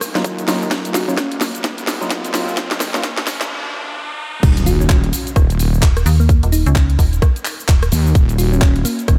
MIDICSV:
0, 0, Header, 1, 8, 480
1, 0, Start_track
1, 0, Key_signature, -6, "minor"
1, 0, Tempo, 465116
1, 733, Time_signature, 4, 2, 24, 8
1, 9479, End_track
2, 0, Start_track
2, 0, Title_t, "Synth pluck"
2, 0, Program_c, 0, 84
2, 973, Note_on_c, 0, 66, 92
2, 1088, Note_off_c, 0, 66, 0
2, 1117, Note_on_c, 0, 61, 85
2, 1178, Note_off_c, 0, 61, 0
2, 1213, Note_on_c, 0, 61, 78
2, 1305, Note_off_c, 0, 61, 0
2, 1452, Note_on_c, 0, 58, 86
2, 1583, Note_off_c, 0, 58, 0
2, 2892, Note_on_c, 0, 58, 93
2, 3008, Note_off_c, 0, 58, 0
2, 3036, Note_on_c, 0, 58, 86
2, 3098, Note_off_c, 0, 58, 0
2, 3132, Note_on_c, 0, 58, 77
2, 3225, Note_off_c, 0, 58, 0
2, 4812, Note_on_c, 0, 66, 93
2, 4928, Note_off_c, 0, 66, 0
2, 4957, Note_on_c, 0, 61, 86
2, 5018, Note_off_c, 0, 61, 0
2, 5053, Note_on_c, 0, 61, 80
2, 5145, Note_off_c, 0, 61, 0
2, 6397, Note_on_c, 0, 58, 93
2, 6458, Note_off_c, 0, 58, 0
2, 6491, Note_on_c, 0, 58, 74
2, 6584, Note_off_c, 0, 58, 0
2, 6732, Note_on_c, 0, 63, 93
2, 6848, Note_off_c, 0, 63, 0
2, 6877, Note_on_c, 0, 61, 87
2, 6938, Note_off_c, 0, 61, 0
2, 6972, Note_on_c, 0, 61, 77
2, 7065, Note_off_c, 0, 61, 0
2, 8652, Note_on_c, 0, 66, 92
2, 8768, Note_off_c, 0, 66, 0
2, 8797, Note_on_c, 0, 61, 83
2, 8858, Note_off_c, 0, 61, 0
2, 8892, Note_on_c, 0, 61, 79
2, 8984, Note_off_c, 0, 61, 0
2, 9132, Note_on_c, 0, 58, 90
2, 9263, Note_off_c, 0, 58, 0
2, 9479, End_track
3, 0, Start_track
3, 0, Title_t, "Synth stab"
3, 0, Program_c, 1, 62
3, 157, Note_on_c, 1, 54, 85
3, 157, Note_on_c, 1, 58, 76
3, 157, Note_on_c, 1, 63, 75
3, 157, Note_on_c, 1, 65, 87
3, 469, Note_off_c, 1, 58, 0
3, 470, Note_off_c, 1, 54, 0
3, 470, Note_off_c, 1, 63, 0
3, 470, Note_off_c, 1, 65, 0
3, 493, Note_on_c, 1, 54, 88
3, 493, Note_on_c, 1, 58, 75
3, 493, Note_on_c, 1, 63, 81
3, 493, Note_on_c, 1, 65, 91
3, 1082, Note_off_c, 1, 54, 0
3, 1082, Note_off_c, 1, 58, 0
3, 1082, Note_off_c, 1, 63, 0
3, 1082, Note_off_c, 1, 65, 0
3, 1117, Note_on_c, 1, 54, 81
3, 1117, Note_on_c, 1, 58, 78
3, 1117, Note_on_c, 1, 63, 76
3, 1117, Note_on_c, 1, 65, 90
3, 1215, Note_off_c, 1, 54, 0
3, 1215, Note_off_c, 1, 58, 0
3, 1215, Note_off_c, 1, 63, 0
3, 1215, Note_off_c, 1, 65, 0
3, 2077, Note_on_c, 1, 54, 81
3, 2077, Note_on_c, 1, 58, 75
3, 2077, Note_on_c, 1, 63, 74
3, 2077, Note_on_c, 1, 65, 87
3, 2389, Note_off_c, 1, 58, 0
3, 2389, Note_off_c, 1, 63, 0
3, 2389, Note_off_c, 1, 65, 0
3, 2390, Note_off_c, 1, 54, 0
3, 2412, Note_on_c, 1, 63, 79
3, 2413, Note_on_c, 1, 54, 88
3, 2413, Note_on_c, 1, 58, 79
3, 2413, Note_on_c, 1, 65, 95
3, 3002, Note_off_c, 1, 54, 0
3, 3002, Note_off_c, 1, 58, 0
3, 3002, Note_off_c, 1, 63, 0
3, 3002, Note_off_c, 1, 65, 0
3, 3037, Note_on_c, 1, 54, 83
3, 3037, Note_on_c, 1, 58, 77
3, 3037, Note_on_c, 1, 63, 76
3, 3037, Note_on_c, 1, 65, 89
3, 3135, Note_off_c, 1, 54, 0
3, 3135, Note_off_c, 1, 58, 0
3, 3135, Note_off_c, 1, 63, 0
3, 3135, Note_off_c, 1, 65, 0
3, 9479, End_track
4, 0, Start_track
4, 0, Title_t, "FM bass"
4, 0, Program_c, 2, 39
4, 6012, Note_on_c, 2, 27, 99
4, 6237, Note_off_c, 2, 27, 0
4, 6252, Note_on_c, 2, 39, 99
4, 6614, Note_off_c, 2, 39, 0
4, 6637, Note_on_c, 2, 27, 96
4, 6854, Note_off_c, 2, 27, 0
4, 6877, Note_on_c, 2, 37, 100
4, 7197, Note_off_c, 2, 37, 0
4, 7213, Note_on_c, 2, 27, 100
4, 7437, Note_off_c, 2, 27, 0
4, 7932, Note_on_c, 2, 27, 99
4, 8157, Note_off_c, 2, 27, 0
4, 9479, End_track
5, 0, Start_track
5, 0, Title_t, "Wobble bass"
5, 0, Program_c, 3, 39
5, 252, Note_on_c, 3, 27, 101
5, 477, Note_off_c, 3, 27, 0
5, 492, Note_on_c, 3, 39, 98
5, 717, Note_off_c, 3, 39, 0
5, 732, Note_on_c, 3, 27, 92
5, 1197, Note_off_c, 3, 27, 0
5, 1212, Note_on_c, 3, 27, 95
5, 1437, Note_off_c, 3, 27, 0
5, 1692, Note_on_c, 3, 27, 94
5, 2157, Note_off_c, 3, 27, 0
5, 2172, Note_on_c, 3, 27, 95
5, 2397, Note_off_c, 3, 27, 0
5, 2412, Note_on_c, 3, 39, 101
5, 2774, Note_off_c, 3, 39, 0
5, 2797, Note_on_c, 3, 27, 102
5, 3014, Note_off_c, 3, 27, 0
5, 3036, Note_on_c, 3, 37, 103
5, 3357, Note_off_c, 3, 37, 0
5, 3372, Note_on_c, 3, 27, 99
5, 3597, Note_off_c, 3, 27, 0
5, 4572, Note_on_c, 3, 27, 94
5, 5037, Note_off_c, 3, 27, 0
5, 5052, Note_on_c, 3, 27, 99
5, 5277, Note_off_c, 3, 27, 0
5, 5532, Note_on_c, 3, 27, 94
5, 5997, Note_off_c, 3, 27, 0
5, 8173, Note_on_c, 3, 39, 103
5, 8397, Note_off_c, 3, 39, 0
5, 8412, Note_on_c, 3, 27, 95
5, 8877, Note_off_c, 3, 27, 0
5, 8892, Note_on_c, 3, 27, 99
5, 9117, Note_off_c, 3, 27, 0
5, 9372, Note_on_c, 3, 27, 92
5, 9479, Note_off_c, 3, 27, 0
5, 9479, End_track
6, 0, Start_track
6, 0, Title_t, "Impact"
6, 0, Program_c, 4, 103
6, 4572, Note_on_c, 4, 60, 76
6, 6492, Note_off_c, 4, 60, 0
6, 9479, End_track
7, 0, Start_track
7, 0, Title_t, "Riser"
7, 0, Program_c, 5, 103
7, 0, Note_on_c, 5, 60, 78
7, 4572, Note_off_c, 5, 60, 0
7, 9479, End_track
8, 0, Start_track
8, 0, Title_t, "Drums"
8, 12, Note_on_c, 9, 37, 64
8, 12, Note_on_c, 9, 46, 107
8, 19, Note_on_c, 9, 82, 75
8, 116, Note_off_c, 9, 37, 0
8, 116, Note_off_c, 9, 46, 0
8, 122, Note_off_c, 9, 82, 0
8, 157, Note_on_c, 9, 38, 64
8, 163, Note_on_c, 9, 82, 33
8, 252, Note_on_c, 9, 36, 127
8, 253, Note_on_c, 9, 42, 80
8, 259, Note_off_c, 9, 82, 0
8, 259, Note_on_c, 9, 82, 43
8, 260, Note_off_c, 9, 38, 0
8, 356, Note_off_c, 9, 36, 0
8, 356, Note_off_c, 9, 42, 0
8, 362, Note_off_c, 9, 82, 0
8, 397, Note_on_c, 9, 42, 53
8, 403, Note_on_c, 9, 82, 31
8, 492, Note_on_c, 9, 38, 68
8, 492, Note_on_c, 9, 46, 110
8, 498, Note_off_c, 9, 82, 0
8, 498, Note_on_c, 9, 82, 72
8, 500, Note_off_c, 9, 42, 0
8, 595, Note_off_c, 9, 38, 0
8, 595, Note_off_c, 9, 46, 0
8, 602, Note_off_c, 9, 82, 0
8, 643, Note_on_c, 9, 82, 33
8, 733, Note_on_c, 9, 36, 126
8, 733, Note_on_c, 9, 38, 70
8, 733, Note_on_c, 9, 42, 76
8, 739, Note_off_c, 9, 82, 0
8, 739, Note_on_c, 9, 82, 42
8, 836, Note_off_c, 9, 36, 0
8, 836, Note_off_c, 9, 38, 0
8, 836, Note_off_c, 9, 42, 0
8, 842, Note_off_c, 9, 82, 0
8, 878, Note_on_c, 9, 42, 53
8, 884, Note_on_c, 9, 82, 29
8, 973, Note_on_c, 9, 38, 71
8, 973, Note_on_c, 9, 46, 106
8, 979, Note_off_c, 9, 82, 0
8, 979, Note_on_c, 9, 82, 70
8, 981, Note_off_c, 9, 42, 0
8, 1076, Note_off_c, 9, 38, 0
8, 1076, Note_off_c, 9, 46, 0
8, 1082, Note_off_c, 9, 82, 0
8, 1124, Note_on_c, 9, 82, 31
8, 1212, Note_on_c, 9, 36, 127
8, 1213, Note_on_c, 9, 38, 81
8, 1213, Note_on_c, 9, 42, 79
8, 1219, Note_off_c, 9, 82, 0
8, 1219, Note_on_c, 9, 82, 44
8, 1316, Note_off_c, 9, 36, 0
8, 1316, Note_off_c, 9, 38, 0
8, 1316, Note_off_c, 9, 42, 0
8, 1322, Note_off_c, 9, 82, 0
8, 1358, Note_on_c, 9, 42, 52
8, 1453, Note_on_c, 9, 38, 76
8, 1453, Note_on_c, 9, 46, 106
8, 1459, Note_on_c, 9, 82, 73
8, 1461, Note_off_c, 9, 42, 0
8, 1556, Note_off_c, 9, 38, 0
8, 1556, Note_off_c, 9, 46, 0
8, 1562, Note_off_c, 9, 82, 0
8, 1598, Note_on_c, 9, 42, 36
8, 1604, Note_on_c, 9, 82, 33
8, 1692, Note_on_c, 9, 36, 127
8, 1693, Note_off_c, 9, 42, 0
8, 1693, Note_on_c, 9, 38, 86
8, 1693, Note_on_c, 9, 42, 79
8, 1699, Note_off_c, 9, 82, 0
8, 1699, Note_on_c, 9, 82, 44
8, 1796, Note_off_c, 9, 36, 0
8, 1796, Note_off_c, 9, 38, 0
8, 1796, Note_off_c, 9, 42, 0
8, 1802, Note_off_c, 9, 82, 0
8, 1837, Note_on_c, 9, 42, 49
8, 1844, Note_on_c, 9, 82, 29
8, 1933, Note_on_c, 9, 38, 84
8, 1933, Note_on_c, 9, 46, 107
8, 1939, Note_off_c, 9, 82, 0
8, 1939, Note_on_c, 9, 82, 73
8, 1941, Note_off_c, 9, 42, 0
8, 2036, Note_off_c, 9, 38, 0
8, 2036, Note_off_c, 9, 46, 0
8, 2042, Note_off_c, 9, 82, 0
8, 2083, Note_on_c, 9, 82, 32
8, 2172, Note_on_c, 9, 36, 127
8, 2173, Note_on_c, 9, 38, 89
8, 2173, Note_on_c, 9, 42, 75
8, 2179, Note_off_c, 9, 82, 0
8, 2179, Note_on_c, 9, 82, 42
8, 2275, Note_off_c, 9, 36, 0
8, 2276, Note_off_c, 9, 38, 0
8, 2276, Note_off_c, 9, 42, 0
8, 2282, Note_off_c, 9, 82, 0
8, 2317, Note_on_c, 9, 42, 52
8, 2323, Note_on_c, 9, 82, 30
8, 2413, Note_on_c, 9, 38, 88
8, 2413, Note_on_c, 9, 46, 104
8, 2419, Note_off_c, 9, 82, 0
8, 2419, Note_on_c, 9, 82, 71
8, 2420, Note_off_c, 9, 42, 0
8, 2516, Note_off_c, 9, 38, 0
8, 2516, Note_off_c, 9, 46, 0
8, 2522, Note_off_c, 9, 82, 0
8, 2564, Note_on_c, 9, 82, 34
8, 2652, Note_on_c, 9, 36, 126
8, 2652, Note_on_c, 9, 38, 90
8, 2652, Note_on_c, 9, 42, 70
8, 2659, Note_off_c, 9, 82, 0
8, 2659, Note_on_c, 9, 82, 45
8, 2755, Note_off_c, 9, 36, 0
8, 2756, Note_off_c, 9, 38, 0
8, 2756, Note_off_c, 9, 42, 0
8, 2762, Note_off_c, 9, 82, 0
8, 2797, Note_on_c, 9, 38, 81
8, 2797, Note_on_c, 9, 42, 51
8, 2803, Note_on_c, 9, 82, 30
8, 2892, Note_off_c, 9, 38, 0
8, 2892, Note_on_c, 9, 38, 91
8, 2892, Note_on_c, 9, 46, 108
8, 2899, Note_off_c, 9, 82, 0
8, 2899, Note_on_c, 9, 82, 72
8, 2900, Note_off_c, 9, 42, 0
8, 2996, Note_off_c, 9, 38, 0
8, 2996, Note_off_c, 9, 46, 0
8, 3002, Note_off_c, 9, 82, 0
8, 3037, Note_on_c, 9, 38, 82
8, 3043, Note_on_c, 9, 82, 33
8, 3132, Note_off_c, 9, 38, 0
8, 3132, Note_on_c, 9, 36, 127
8, 3132, Note_on_c, 9, 38, 98
8, 3132, Note_on_c, 9, 42, 76
8, 3139, Note_off_c, 9, 82, 0
8, 3139, Note_on_c, 9, 82, 44
8, 3235, Note_off_c, 9, 36, 0
8, 3236, Note_off_c, 9, 38, 0
8, 3236, Note_off_c, 9, 42, 0
8, 3242, Note_off_c, 9, 82, 0
8, 3277, Note_on_c, 9, 38, 84
8, 3277, Note_on_c, 9, 42, 52
8, 3372, Note_off_c, 9, 38, 0
8, 3372, Note_on_c, 9, 36, 59
8, 3372, Note_on_c, 9, 38, 95
8, 3372, Note_on_c, 9, 46, 104
8, 3378, Note_on_c, 9, 82, 72
8, 3380, Note_off_c, 9, 42, 0
8, 3475, Note_off_c, 9, 36, 0
8, 3475, Note_off_c, 9, 38, 0
8, 3475, Note_off_c, 9, 46, 0
8, 3482, Note_off_c, 9, 82, 0
8, 3517, Note_on_c, 9, 38, 87
8, 3517, Note_on_c, 9, 42, 36
8, 3523, Note_on_c, 9, 82, 34
8, 3620, Note_off_c, 9, 38, 0
8, 3620, Note_off_c, 9, 42, 0
8, 3626, Note_off_c, 9, 82, 0
8, 4572, Note_on_c, 9, 36, 121
8, 4572, Note_on_c, 9, 42, 79
8, 4572, Note_on_c, 9, 49, 100
8, 4579, Note_on_c, 9, 82, 43
8, 4675, Note_off_c, 9, 36, 0
8, 4676, Note_off_c, 9, 42, 0
8, 4676, Note_off_c, 9, 49, 0
8, 4682, Note_off_c, 9, 82, 0
8, 4717, Note_on_c, 9, 42, 56
8, 4723, Note_on_c, 9, 82, 31
8, 4812, Note_on_c, 9, 46, 98
8, 4818, Note_off_c, 9, 82, 0
8, 4818, Note_on_c, 9, 82, 77
8, 4820, Note_off_c, 9, 42, 0
8, 4915, Note_off_c, 9, 46, 0
8, 4922, Note_off_c, 9, 82, 0
8, 4963, Note_on_c, 9, 82, 33
8, 5050, Note_on_c, 9, 39, 125
8, 5052, Note_on_c, 9, 36, 120
8, 5053, Note_on_c, 9, 42, 82
8, 5059, Note_off_c, 9, 82, 0
8, 5059, Note_on_c, 9, 82, 45
8, 5153, Note_off_c, 9, 39, 0
8, 5155, Note_off_c, 9, 36, 0
8, 5156, Note_off_c, 9, 42, 0
8, 5162, Note_off_c, 9, 82, 0
8, 5198, Note_on_c, 9, 42, 57
8, 5293, Note_on_c, 9, 46, 105
8, 5299, Note_on_c, 9, 82, 75
8, 5301, Note_off_c, 9, 42, 0
8, 5396, Note_off_c, 9, 46, 0
8, 5402, Note_off_c, 9, 82, 0
8, 5438, Note_on_c, 9, 42, 40
8, 5444, Note_on_c, 9, 82, 34
8, 5532, Note_on_c, 9, 36, 122
8, 5533, Note_off_c, 9, 42, 0
8, 5533, Note_on_c, 9, 37, 84
8, 5533, Note_on_c, 9, 42, 82
8, 5540, Note_off_c, 9, 82, 0
8, 5540, Note_on_c, 9, 82, 46
8, 5635, Note_off_c, 9, 36, 0
8, 5637, Note_off_c, 9, 37, 0
8, 5637, Note_off_c, 9, 42, 0
8, 5643, Note_off_c, 9, 82, 0
8, 5678, Note_on_c, 9, 42, 56
8, 5684, Note_on_c, 9, 82, 31
8, 5773, Note_on_c, 9, 46, 110
8, 5779, Note_off_c, 9, 82, 0
8, 5779, Note_on_c, 9, 82, 77
8, 5781, Note_off_c, 9, 42, 0
8, 5876, Note_off_c, 9, 46, 0
8, 5882, Note_off_c, 9, 82, 0
8, 5924, Note_on_c, 9, 82, 35
8, 6010, Note_on_c, 9, 39, 127
8, 6012, Note_on_c, 9, 36, 123
8, 6013, Note_on_c, 9, 42, 86
8, 6019, Note_off_c, 9, 82, 0
8, 6019, Note_on_c, 9, 82, 44
8, 6114, Note_off_c, 9, 39, 0
8, 6116, Note_off_c, 9, 36, 0
8, 6116, Note_off_c, 9, 42, 0
8, 6122, Note_off_c, 9, 82, 0
8, 6158, Note_on_c, 9, 37, 60
8, 6158, Note_on_c, 9, 42, 56
8, 6164, Note_on_c, 9, 82, 32
8, 6253, Note_on_c, 9, 46, 103
8, 6259, Note_off_c, 9, 82, 0
8, 6259, Note_on_c, 9, 82, 78
8, 6261, Note_off_c, 9, 37, 0
8, 6261, Note_off_c, 9, 42, 0
8, 6356, Note_off_c, 9, 46, 0
8, 6362, Note_off_c, 9, 82, 0
8, 6403, Note_on_c, 9, 82, 34
8, 6493, Note_on_c, 9, 36, 124
8, 6493, Note_on_c, 9, 42, 80
8, 6499, Note_off_c, 9, 82, 0
8, 6499, Note_on_c, 9, 82, 43
8, 6596, Note_off_c, 9, 36, 0
8, 6596, Note_off_c, 9, 42, 0
8, 6602, Note_off_c, 9, 82, 0
8, 6637, Note_on_c, 9, 42, 54
8, 6643, Note_on_c, 9, 82, 30
8, 6732, Note_on_c, 9, 46, 103
8, 6738, Note_off_c, 9, 82, 0
8, 6738, Note_on_c, 9, 82, 78
8, 6740, Note_off_c, 9, 42, 0
8, 6835, Note_off_c, 9, 46, 0
8, 6842, Note_off_c, 9, 82, 0
8, 6877, Note_on_c, 9, 42, 36
8, 6883, Note_on_c, 9, 82, 31
8, 6970, Note_on_c, 9, 39, 127
8, 6973, Note_off_c, 9, 42, 0
8, 6973, Note_on_c, 9, 36, 127
8, 6973, Note_on_c, 9, 42, 80
8, 6979, Note_off_c, 9, 82, 0
8, 6979, Note_on_c, 9, 82, 44
8, 7073, Note_off_c, 9, 39, 0
8, 7076, Note_off_c, 9, 36, 0
8, 7076, Note_off_c, 9, 42, 0
8, 7082, Note_off_c, 9, 82, 0
8, 7117, Note_on_c, 9, 42, 56
8, 7213, Note_on_c, 9, 36, 60
8, 7213, Note_on_c, 9, 46, 105
8, 7219, Note_on_c, 9, 82, 71
8, 7220, Note_off_c, 9, 42, 0
8, 7316, Note_off_c, 9, 36, 0
8, 7316, Note_off_c, 9, 46, 0
8, 7322, Note_off_c, 9, 82, 0
8, 7357, Note_on_c, 9, 42, 39
8, 7363, Note_on_c, 9, 82, 32
8, 7452, Note_on_c, 9, 36, 124
8, 7453, Note_off_c, 9, 42, 0
8, 7453, Note_on_c, 9, 37, 89
8, 7453, Note_on_c, 9, 42, 88
8, 7459, Note_off_c, 9, 82, 0
8, 7459, Note_on_c, 9, 82, 46
8, 7556, Note_off_c, 9, 36, 0
8, 7556, Note_off_c, 9, 37, 0
8, 7556, Note_off_c, 9, 42, 0
8, 7562, Note_off_c, 9, 82, 0
8, 7597, Note_on_c, 9, 42, 55
8, 7603, Note_on_c, 9, 82, 31
8, 7690, Note_on_c, 9, 39, 64
8, 7692, Note_on_c, 9, 46, 111
8, 7698, Note_off_c, 9, 82, 0
8, 7698, Note_on_c, 9, 82, 75
8, 7700, Note_off_c, 9, 42, 0
8, 7793, Note_off_c, 9, 39, 0
8, 7795, Note_off_c, 9, 46, 0
8, 7802, Note_off_c, 9, 82, 0
8, 7843, Note_on_c, 9, 82, 32
8, 7929, Note_on_c, 9, 39, 127
8, 7932, Note_on_c, 9, 36, 127
8, 7932, Note_on_c, 9, 42, 80
8, 7938, Note_off_c, 9, 82, 0
8, 7938, Note_on_c, 9, 82, 44
8, 8032, Note_off_c, 9, 39, 0
8, 8035, Note_off_c, 9, 42, 0
8, 8036, Note_off_c, 9, 36, 0
8, 8041, Note_off_c, 9, 82, 0
8, 8077, Note_on_c, 9, 37, 64
8, 8077, Note_on_c, 9, 42, 55
8, 8083, Note_on_c, 9, 82, 32
8, 8172, Note_on_c, 9, 46, 106
8, 8178, Note_off_c, 9, 82, 0
8, 8178, Note_on_c, 9, 82, 72
8, 8180, Note_off_c, 9, 37, 0
8, 8180, Note_off_c, 9, 42, 0
8, 8275, Note_off_c, 9, 46, 0
8, 8281, Note_off_c, 9, 82, 0
8, 8323, Note_on_c, 9, 82, 33
8, 8412, Note_on_c, 9, 36, 127
8, 8412, Note_on_c, 9, 42, 75
8, 8418, Note_off_c, 9, 82, 0
8, 8418, Note_on_c, 9, 82, 43
8, 8515, Note_off_c, 9, 42, 0
8, 8516, Note_off_c, 9, 36, 0
8, 8522, Note_off_c, 9, 82, 0
8, 8557, Note_on_c, 9, 42, 52
8, 8564, Note_on_c, 9, 82, 31
8, 8652, Note_on_c, 9, 46, 107
8, 8659, Note_off_c, 9, 82, 0
8, 8659, Note_on_c, 9, 82, 72
8, 8661, Note_off_c, 9, 42, 0
8, 8756, Note_off_c, 9, 46, 0
8, 8762, Note_off_c, 9, 82, 0
8, 8804, Note_on_c, 9, 82, 31
8, 8890, Note_on_c, 9, 39, 123
8, 8892, Note_on_c, 9, 36, 127
8, 8892, Note_on_c, 9, 42, 79
8, 8899, Note_off_c, 9, 82, 0
8, 8899, Note_on_c, 9, 82, 44
8, 8993, Note_off_c, 9, 39, 0
8, 8996, Note_off_c, 9, 36, 0
8, 8996, Note_off_c, 9, 42, 0
8, 9002, Note_off_c, 9, 82, 0
8, 9037, Note_on_c, 9, 42, 49
8, 9133, Note_on_c, 9, 46, 106
8, 9139, Note_on_c, 9, 82, 72
8, 9141, Note_off_c, 9, 42, 0
8, 9236, Note_off_c, 9, 46, 0
8, 9242, Note_off_c, 9, 82, 0
8, 9277, Note_on_c, 9, 42, 36
8, 9283, Note_on_c, 9, 82, 31
8, 9372, Note_off_c, 9, 42, 0
8, 9372, Note_on_c, 9, 36, 127
8, 9372, Note_on_c, 9, 37, 87
8, 9372, Note_on_c, 9, 42, 82
8, 9378, Note_off_c, 9, 82, 0
8, 9378, Note_on_c, 9, 82, 45
8, 9475, Note_off_c, 9, 37, 0
8, 9475, Note_off_c, 9, 42, 0
8, 9476, Note_off_c, 9, 36, 0
8, 9479, Note_off_c, 9, 82, 0
8, 9479, End_track
0, 0, End_of_file